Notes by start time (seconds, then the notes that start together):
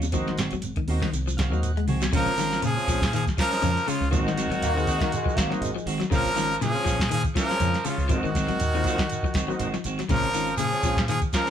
Already playing: D#2
0.02 closed hi-hat, high conga, shekere
0.12 G#1 D#3 F3 G#3 A#3 C4 D#4 F#4, kick, closed hi-hat, low conga, shekere
0.28 D#3, snare
0.38 D#3 G#3 C4 F#4, snare, closed hi-hat, high conga, shekere
0.51 G#1 F#3, closed hi-hat, high conga, shekere
0.62 closed hi-hat, shekere
0.76 D#3, kick, closed hi-hat
0.88 D#2 D#3 G#3 A#3 C4 D#4 F#4, open hi-hat, high conga, shekere
1.02 D#3, kick, snare
1.13 C2, closed hi-hat, shekere
1.27 F3, shekere
1.37 D#3 G#3 C4 F#4 F5, kick, snare, closed hi-hat, high conga, shekere
1.51 D#2 F#3 G#3 A#3 C4 D#4 F#4, shekere
1.63 F#5, closed hi-hat, shekere
1.77 G#3, closed hi-hat
1.87 C2 D#3 G#3 C4 F#4 G#5, open hi-hat, high tom, low conga, shekere
2.01 F#3, snare, closed hi-hat, high conga, shekere
2.12 A#1 C#3 G#3 C4 C#4 F4, kick, snare, closed hi-hat, crash, shekere
2.16 F3 A#4
2.26 G#1, closed hi-hat, shekere
2.38 D#3 G#3 C#4 F4, snare, closed hi-hat, shekere
2.52 C#4 F4, snare, shekere
2.62 A#2 C#3 F3, closed hi-hat, shekere
2.66 G#4
2.74 G#3 C4 C#4 F4, muted fingered electric bass stroke
2.78 shekere
2.87 A#1 F3 G#3 C#4 F4, kick, closed hi-hat, shekere
3.01 A#2, kick, snare, closed hi-hat, shekere
3.13 D#3 F3 G#4, closed hi-hat, shekere
3.27 kick, snare, closed hi-hat, shekere
3.37 F3 G#3 C#4 F4 A#4, kick, snare, closed hi-hat, shekere
3.49 G#3 C4 C#4 D#4, snare, closed hi-hat, shekere
3.62 F2 C#3 G#3 C#4 F4, closed hi-hat, shekere
3.77 closed hi-hat, shekere
3.87 C#3 G#3 C#4 F4, muted fingered electric bass stroke, open hi-hat, shekere
4.01 C#2, shekere
4.11 G#1 D#3 F3 G#3 A#3 C4 D#4 F#4, kick, closed hi-hat, shekere
4.25 G#1 D#3, snare, shekere
4.36 D#3 G#3 C4 F#4, snare, closed hi-hat, shekere
4.49 G#1 F#3 G#3 C4 F#4, closed hi-hat, shekere
4.61 D#2 A#3, snare, closed hi-hat, shekere
4.74 D#3 G#3 A#3 C4 D#4 F#4, shekere
4.87 D#3 G#3 C4 F#4, kick, closed hi-hat, shekere
5.00 D#3 A#3, kick, snare, closed hi-hat, shekere
5.12 G#3, closed hi-hat, shekere
5.26 F3, muted fingered electric bass stroke, kick, shekere
5.36 G#1 D#3 G#3 A#3 C4 F#4, kick, snare, closed hi-hat, shekere
5.50 F#3 A#3 C4 D#4 F#4, snare, shekere
5.61 G#1 G#3, closed hi-hat, shekere
5.76 F3, shekere
5.86 G#1 D#3 G#3 C4 F#4, open hi-hat, shekere
6.00 F#3, snare, closed hi-hat, shekere
6.10 A#1 C#3 F3 G#3 C4 C#4 F4 A#4, muted clean electric guitar stroke, kick, snare, closed hi-hat, shekere
6.25 G#1, closed hi-hat, shekere
6.35 D#3 G#3 C#4 F4, snare, closed hi-hat, shekere
6.52 shekere
6.61 A#2 C#3 F3 G#4, snare, closed hi-hat, shekere
6.73 G#3 C4 C#4 F4, muted fingered electric bass stroke, shekere
6.85 A#1 F3 G#3 C#4 F4, kick, snare, closed hi-hat, shekere
7.00 A#2, kick, snare, closed hi-hat, shekere
7.10 D#3 F3 G#4, closed hi-hat, shekere
7.24 kick, closed hi-hat, shekere
7.34 F3 G#3 C#4 F4 A#4, kick, snare, closed hi-hat, shekere
7.39 F3
7.49 G#3 C4 C#4 G#4, snare, closed hi-hat, shekere
7.60 F2 C#3 G#3 C#4 F4, closed hi-hat, shekere
7.74 snare, closed hi-hat, shekere
7.85 C#3 G#3 C#4 F4, muted fingered electric bass stroke, open hi-hat, shekere
7.89 C#3
7.98 C#2, shekere
8.09 G#1 F3 G#3 A#3 C4 D#4 F#4, muted clean electric guitar stroke, kick, closed hi-hat, shekere
8.14 D#3
8.24 G#1 D#3, shekere
8.35 D#3 G#3 C4 F#4, kick, snare, closed hi-hat, shekere
8.48 G#1 F#3 G#3 C4 F#4, closed hi-hat, shekere
8.60 D#2, closed hi-hat, shekere
8.74 D#3 A#3 C4 D#4 F4, shekere
8.84 D#3 G#3 C4 F#4, kick, closed hi-hat, shekere
8.98 D#3, kick, snare, closed hi-hat, shekere
9.09 closed hi-hat, shekere
9.23 F3, muted fingered electric bass stroke, kick, shekere
9.34 G#1 D#3 C4 F#4, kick, snare, closed hi-hat, shekere
9.48 F#3 A#3 C4 D#4 F#4, shekere
9.59 G#1 D#3 G#3 C4 F#4, closed hi-hat, shekere
9.74 F3, snare, shekere
9.84 G#1 D#3 G#3 C4 F#4, closed hi-hat, shekere
9.99 F#3, snare, closed hi-hat, shekere
10.08 A#1 C#3 F3 G#3 C4 C#4 F4 A#4, muted clean electric guitar stroke, kick, snare, closed hi-hat, shekere
10.22 G#1, closed hi-hat, shekere
10.34 D#3 G#3 C#4 F4, closed hi-hat, shekere
10.47 shekere
10.57 A#2 C#3 F3 G#4, closed hi-hat, shekere
10.72 G#3 C4 C#4 G#4, muted fingered electric bass stroke, shekere
10.83 A#1 F3 G#3 C#4 F4, kick, closed hi-hat, shekere
10.97 A#2, kick, snare, closed hi-hat, shekere
11.08 D#3 F3 G#4, closed hi-hat, shekere
11.22 kick, closed hi-hat, shekere
11.33 F3 G#3 C#4 F4 A#4, kick, snare, closed hi-hat, shekere
11.44 G#3 C4 C#4 F4